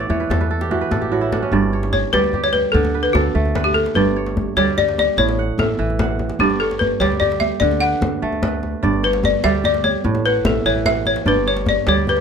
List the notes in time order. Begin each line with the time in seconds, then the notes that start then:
Already playing: A2 B3 E5 F#5 G5
0.00 D5
0.09 E2 E3 C#5, djembe slap, djembe tone
0.20 B4
0.30 E2 A4, djembe slap, djembe bass
0.41 B4, djembe tone
0.51 A4
0.61 G4, djembe slap
0.71 E3 F#4, djembe slap, djembe tone
0.81 B4
0.91 A1 A4, djembe slap, djembe bass
1.01 G4, djembe slap, djembe tone
1.11 A2 F#4, djembe slap
1.21 E4, djembe slap
1.32 D4, djembe slap, djembe tone
1.42 C#4
1.52 G1 G2 D5, djembe bass
1.63 djembe tone
1.73 C#5
1.83 djembe slap
1.93 C#5, djembe slap, djembe bass
2.04 djembe slap
2.13 D2 G3 B4 D5, djembe slap
2.24 djembe tone
2.33 G4, djembe slap, djembe bass
2.44 C#5, djembe slap
2.53 B4, djembe tone
2.72 D2 D3 A4, djembe bass
2.85 djembe slap, djembe tone
2.95 B4
3.03 B4
3.13 D2 F#4 A4, djembe slap, djembe tone, djembe bass
3.35 D2 A3
3.45 djembe tone
3.55 B4, djembe slap, djembe bass
3.64 G4
3.74 A4, djembe tone
3.86 djembe slap
3.95 G1 G2 B4 D5, djembe bass
4.06 djembe tone
4.16 C#5
4.26 djembe slap
4.37 djembe slap, djembe tone, djembe bass
4.48 djembe slap
4.56 D2 G3 C#5 D5, djembe slap
4.68 djembe tone
4.77 G4 D5, djembe slap, djembe bass
4.88 djembe slap
4.98 D5, djembe tone
5.17 A1 A2 C#5, djembe bass
5.29 djembe slap, djembe tone
5.39 F#5
5.58 A1 A4 E5, djembe slap, djembe tone, djembe bass
5.79 A1 E3
5.90 djembe tone
5.99 F#5, djembe slap, djembe bass
6.19 djembe tone
6.29 djembe slap
6.39 G1 G2 G4 D5, djembe bass
6.50 djembe tone
6.60 A4 C#5
6.71 djembe slap
6.79 B4, djembe bass
6.91 djembe slap
7.00 D2 G3 C#5 D5, djembe slap
7.12 djembe tone
7.20 G4 D5, djembe slap, djembe bass
7.32 djembe slap
7.40 E5, djembe tone
7.60 D2 D3 D5, djembe bass
7.71 djembe tone
7.80 B4 F#5
8.01 D2, djembe slap, djembe tone, djembe bass
8.22 D2 A3
8.33 djembe tone
8.43 B4, djembe slap, djembe bass
8.63 djembe tone
8.83 G1 G2 D5, djembe bass
8.93 djembe slap, djembe tone
9.03 B4 C#5
9.13 djembe slap
9.24 D5, djembe tone, djembe bass
9.44 D2 G3 D5 E5, djembe slap
9.54 djembe tone
9.64 G4 D5, djembe bass
9.74 djembe slap
9.84 C#5, djembe slap, djembe tone
9.94 djembe slap
10.04 A1 A2, djembe bass
10.15 djembe slap, djembe tone
10.25 B4 F#5, djembe slap
10.45 A1 A4 E5, djembe slap, djembe tone, djembe bass
10.55 djembe slap
10.65 A1 E3 C#5
10.75 djembe tone
10.86 E5 F#5, djembe slap, djembe bass
11.06 C#5, djembe tone
11.16 djembe slap
11.26 G1 G2 B4 D5, djembe bass
11.36 djembe tone
11.47 C#5
11.57 djembe slap
11.66 D5, djembe slap, djembe tone, djembe bass
11.77 djembe slap
11.87 D2 G3 C#5 D5, djembe slap
11.97 djembe tone
12.07 G4 B4, djembe slap, djembe bass
12.17 djembe slap